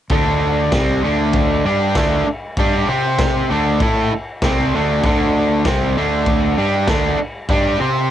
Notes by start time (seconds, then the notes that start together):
0.10 D2 D3 A3 D4, kick, crash
0.72 C2 C3 G3 C4, kick, snare, crash
1.04 D2 D3 A3 D4
1.33 kick, crash
1.65 G2 G3 D4 G4
1.95 D2 D3 A3 D4, kick, snare, crash
2.27 muted fingered electric bass stroke, muted overdriven electric guitar stroke
2.57 G2 G3 D4 G4, kick, crash
2.88 C3 C4 G4 C5
3.19 kick, snare, crash
3.50 D2 D3 A3 D4
3.80 A2 A3 E4 A4, kick, crash
4.12 muted fingered electric bass stroke, muted overdriven electric guitar stroke
4.42 C2 C3 G3 C4, kick, snare, crash
4.74 D2 D3 A3 D4
5.04 D2 D3 A3 D4, kick, crash
5.65 C2 C3 G3 C4, kick, snare, crash
5.97 D2 D3 A3 D4
6.26 kick, crash
6.58 G2 G3 D4 G4
6.88 D2 D3 A3 D4, kick, snare, crash
7.19 muted overdriven electric guitar stroke, muted fingered electric bass stroke
7.49 G2 G3 D4 G4, kick, crash
7.80 C3 C4 G4 C5